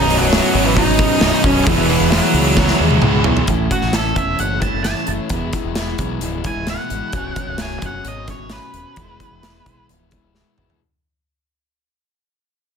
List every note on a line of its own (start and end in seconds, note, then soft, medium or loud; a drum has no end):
0.00 0.16 B0 loud
0.00 0.30 B1 loud
0.00 0.30 F#2 loud
0.00 0.52 B2 loud
0.00 0.18 D#4 loud
0.00 1.64 B4 medium
0.00 0.18 D#5 medium
0.00 1.64 D#5 medium
0.00 1.64 C#6 medium
0.08 0.31 B2 medium
0.08 0.32 F#3 medium
0.08 0.32 C#4 medium
0.08 open hi-hat medium
0.19 0.39 B0 medium
0.19 0.62 F#3 medium
0.19 0.65 F#4 loud
0.31 0.77 B1 medium
0.31 0.75 F#2 medium
0.31 0.54 B2 loud
0.31 0.54 F#3 loud
0.31 0.52 C#4 loud
0.31 snare loud
0.31 open hi-hat medium
0.53 1.11 G#1 loud
0.53 1.20 B1 medium
0.53 1.21 F#2 medium
0.53 0.75 B2 medium
0.53 0.76 F#3 medium
0.53 0.77 C#4 medium
0.53 open hi-hat medium
0.65 0.76 E3 medium
0.65 0.76 E4 medium
0.76 0.99 F#2 medium
0.76 0.99 B2 medium
0.76 0.98 F#3 medium
0.76 0.98 C#4 medium
0.76 1.44 D#4 loud
0.76 1.41 D#5 medium
0.76 kick medium
0.76 open hi-hat medium
0.99 1.45 B1 medium
0.99 1.20 F#2 medium
0.99 1.21 B2 medium
0.99 1.21 F#3 medium
0.99 1.21 C#4 medium
0.99 kick medium
0.99 open hi-hat medium
1.19 1.31 B0 loud
1.19 1.64 B1 loud
1.19 1.65 B1 medium
1.19 1.65 F#2 medium
1.19 1.44 B2 medium
1.19 1.43 F#3 medium
1.19 1.42 C#4 medium
1.19 snare loud
1.19 open hi-hat medium
1.43 1.63 B0 loud
1.43 1.65 B2 medium
1.43 1.65 F#3 medium
1.43 1.65 C#4 medium
1.43 1.67 C#4 medium
1.43 1.66 C#5 medium
1.43 kick loud
1.43 open hi-hat medium
1.65 1.76 E1 loud
1.65 2.09 E2 medium
1.65 2.09 B2 medium
1.65 2.09 E3 medium
1.65 1.90 E3 loud
1.65 1.89 G#3 loud
1.65 1.88 B3 loud
1.65 2.12 E4 loud
1.65 1.87 E4 loud
1.65 3.45 G#4 medium
1.65 3.46 F#5 medium
1.65 3.46 E6 medium
1.65 kick loud
1.65 open hi-hat medium
1.77 1.97 E1 loud
1.89 2.09 E3 medium
1.89 2.10 G#3 medium
1.89 2.10 B3 medium
1.89 2.10 E4 medium
1.89 open hi-hat medium
2.01 2.20 E1 medium
2.10 2.56 E2 medium
2.10 2.56 B2 medium
2.10 2.35 E3 medium
2.10 2.76 F#3 medium
2.10 2.34 G#3 loud
2.10 2.33 B3 loud
2.10 2.32 E4 loud
2.10 2.76 F#4 medium
2.10 snare loud
2.10 open hi-hat medium
2.33 2.72 C#2 loud
2.33 3.01 E2 medium
2.33 3.02 B2 medium
2.33 2.55 E3 medium
2.33 2.56 G#3 medium
2.33 2.56 B3 medium
2.33 2.57 E4 medium
2.33 open hi-hat medium
2.57 2.78 E3 medium
2.57 2.78 G#3 medium
2.57 2.78 B3 medium
2.57 2.77 E4 medium
2.57 kick medium
2.57 snare medium
2.68 snare medium
2.78 3.00 D#2 medium
2.78 3.25 E2 medium
2.78 3.25 B2 medium
2.78 3.00 E3 medium
2.78 3.01 G#3 medium
2.78 3.02 B3 medium
2.78 3.02 E4 medium
2.91 high tom medium
3.01 3.23 C#2 medium
3.01 3.46 E2 medium
3.01 3.47 E2 medium
3.01 3.47 B2 loud
3.01 3.48 B2 medium
3.01 3.25 E3 medium
3.01 3.25 G#3 medium
3.01 3.24 B3 medium
3.01 3.23 E4 medium
3.01 mid tom medium
3.07 3.49 E3 medium
3.24 3.46 B1 medium
3.24 3.47 E3 medium
3.24 3.47 G#3 medium
3.24 3.47 B3 medium
3.24 3.46 E4 medium
3.24 floor tom loud
3.37 floor tom loud
3.47 3.67 A1 medium
3.47 3.93 A2 medium
3.47 4.16 E3 medium
3.47 3.72 A3 medium
3.47 3.71 C#4 medium
3.47 3.71 E4 medium
3.47 3.70 A4 medium
3.47 kick loud
3.47 closed hi-hat medium
3.71 3.92 A3 medium
3.71 3.93 C#4 medium
3.71 3.94 E4 medium
3.71 3.93 F#4 medium
3.71 3.94 A4 medium
3.71 kick medium
3.71 closed hi-hat medium
3.82 4.11 A1 medium
3.82 snare soft
3.93 4.15 A3 medium
3.93 4.15 C#4 medium
3.93 4.15 E4 medium
3.93 4.16 A4 medium
3.93 4.14 A4 medium
3.93 snare loud
3.93 closed hi-hat medium
4.15 4.35 E1 medium
4.15 4.62 A2 medium
4.15 4.62 E3 medium
4.15 4.37 A3 medium
4.15 4.38 C#4 medium
4.15 4.38 E4 medium
4.15 4.39 A4 medium
4.15 4.39 E5 medium
4.15 kick medium
4.15 closed hi-hat medium
4.38 4.68 F#1 medium
4.38 4.62 A3 medium
4.38 4.62 C#4 medium
4.38 4.61 E4 medium
4.38 4.60 A4 medium
4.38 4.61 F#5 medium
4.38 closed hi-hat medium
4.61 5.08 A2 medium
4.61 5.08 E3 medium
4.61 4.84 A3 medium
4.61 4.85 C#4 medium
4.61 4.85 E4 medium
4.61 4.85 A4 medium
4.61 4.83 A5 medium
4.61 kick medium
4.61 closed hi-hat medium
4.74 4.93 F#1 medium
4.84 5.29 A2 medium
4.84 5.29 E3 medium
4.84 5.09 A3 medium
4.84 5.08 C#4 medium
4.84 5.08 E4 medium
4.84 5.07 A4 medium
4.84 5.06 A5 medium
4.84 snare medium
4.84 closed hi-hat medium
5.07 5.17 F#1 medium
5.07 5.30 A3 medium
5.07 5.30 C#4 medium
5.07 5.30 E4 medium
5.07 5.29 A4 medium
5.07 closed hi-hat medium
5.29 5.49 E1 medium
5.29 5.76 E2 medium
5.29 5.76 B2 medium
5.29 5.54 E3 medium
5.29 5.54 G#3 medium
5.29 5.54 B3 medium
5.29 5.52 E4 loud
5.29 kick loud
5.29 closed hi-hat medium
5.53 5.75 E3 medium
5.53 5.76 G#3 medium
5.53 5.77 B3 medium
5.53 5.77 E4 medium
5.53 kick medium
5.53 closed hi-hat medium
5.65 5.93 E1 medium
5.75 5.99 E3 medium
5.75 5.98 G#3 medium
5.75 5.99 B3 medium
5.75 5.98 E4 medium
5.75 snare loud
5.75 closed hi-hat medium
5.98 6.18 B1 medium
5.98 6.45 E2 medium
5.98 6.45 B2 medium
5.98 6.19 E3 medium
5.98 6.20 G#3 medium
5.98 6.22 B3 medium
5.98 6.22 E4 medium
5.98 kick medium
5.98 closed hi-hat medium
6.21 6.50 C#1 medium
6.21 6.45 E3 medium
6.21 6.45 G#3 medium
6.21 6.45 B3 medium
6.21 6.44 E4 medium
6.21 closed hi-hat medium
6.44 6.91 E2 medium
6.44 6.91 B2 medium
6.44 6.66 E3 soft
6.44 6.67 G#3 medium
6.44 6.68 B3 medium
6.44 6.67 E4 medium
6.44 6.68 G#5 medium
6.44 kick medium
6.44 closed hi-hat soft
6.57 6.76 C#1 medium
6.66 7.12 E2 medium
6.66 7.12 B2 medium
6.66 6.92 E3 medium
6.66 6.91 G#3 medium
6.66 6.91 B3 medium
6.66 6.90 E4 medium
6.66 7.58 F#5 medium
6.66 snare medium
6.66 closed hi-hat medium
6.90 7.00 G#1 medium
6.90 7.13 E3 medium
6.90 7.13 G#3 medium
6.90 7.18 B3 medium
6.90 7.12 E4 medium
6.90 closed hi-hat medium
7.13 7.32 B0 medium
7.13 7.59 B1 medium
7.13 7.58 F#2 medium
7.13 7.37 B2 medium
7.13 7.38 F#3 medium
7.13 7.36 C#4 medium
7.13 kick medium
7.13 closed hi-hat medium
7.36 7.58 B2 soft
7.36 7.59 F#3 medium
7.36 7.59 C#4 medium
7.36 kick medium
7.36 closed hi-hat medium
7.48 7.77 B0 medium
7.58 7.82 F#2 medium
7.58 7.82 B2 medium
7.58 7.83 F#3 medium
7.58 7.81 C#4 medium
7.58 7.83 G#5 medium
7.58 snare medium
7.58 closed hi-hat medium
7.82 8.01 F#1 medium
7.82 8.29 B1 medium
7.82 8.03 F#2 medium
7.82 8.04 B2 medium
7.82 8.05 F#3 medium
7.82 8.05 C#4 medium
7.82 kick medium
7.82 closed hi-hat soft
7.86 8.06 F#5 medium
8.04 8.34 G#1 medium
8.04 8.49 F#2 medium
8.04 8.28 B2 medium
8.04 8.28 F#3 medium
8.04 8.26 C#4 medium
8.04 8.29 D#5 medium
8.04 closed hi-hat medium
8.27 8.74 B1 medium
8.27 8.47 F#2 medium
8.27 8.50 B2 soft
8.27 8.51 F#3 medium
8.27 8.51 C#4 medium
8.27 8.51 C#5 medium
8.27 kick medium
8.27 snare soft
8.27 closed hi-hat medium
8.39 8.58 G#1 medium
8.49 8.95 B1 medium
8.49 8.95 F#2 medium
8.49 8.74 B2 medium
8.49 8.73 F#3 medium
8.49 8.71 C#4 medium
8.49 9.86 B4 medium
8.49 snare medium
8.49 closed hi-hat medium
8.73 8.83 D#1 medium
8.73 8.96 B2 soft
8.73 8.98 F#3 medium
8.73 8.95 C#4 medium
8.73 closed hi-hat medium
8.96 9.16 E1 medium
8.96 9.43 E2 medium
8.96 9.43 B2 medium
8.96 9.20 E3 medium
8.96 9.19 G#3 medium
8.96 9.18 B3 medium
8.96 9.18 E4 medium
8.96 kick medium
8.96 closed hi-hat medium
9.19 9.43 E3 soft
9.19 9.43 G#3 medium
9.19 9.44 B3 medium
9.19 9.44 E4 medium
9.19 kick medium
9.19 closed hi-hat medium
9.31 9.60 E1 medium
9.43 9.66 E3 medium
9.43 9.66 G#3 medium
9.43 9.65 B3 medium
9.43 9.65 E4 medium
9.43 snare medium
9.43 closed hi-hat medium
9.66 9.85 B1 medium
9.66 10.13 E2 medium
9.66 10.13 B2 medium
9.66 9.87 E3 medium
9.66 9.88 G#3 medium
9.66 9.89 B3 medium
9.66 9.90 E4 medium
9.66 kick medium
9.66 closed hi-hat medium
9.88 10.18 C#1 medium
9.88 10.13 E3 medium
9.88 10.12 G#3 medium
9.88 10.11 B3 medium
9.88 10.11 E4 medium
9.88 closed hi-hat medium
10.11 10.59 E2 soft
10.11 10.59 B2 medium
10.11 10.35 E3 soft
10.11 10.35 G#3 soft
10.11 10.35 B3 medium
10.11 10.36 E4 medium
10.11 kick medium
10.11 closed hi-hat soft
10.23 10.42 C#1 medium
10.35 10.80 E2 medium
10.35 10.80 B2 medium
10.35 10.59 E3 medium
10.35 10.58 G#3 medium
10.35 10.58 B3 medium
10.35 10.57 E4 medium
10.35 snare soft
10.58 10.68 G#1 medium
10.58 10.81 E3 soft
10.58 10.80 G#3 soft
10.58 10.80 B3 medium
10.58 10.80 E4 medium
10.58 mid tom medium
10.70 floor tom medium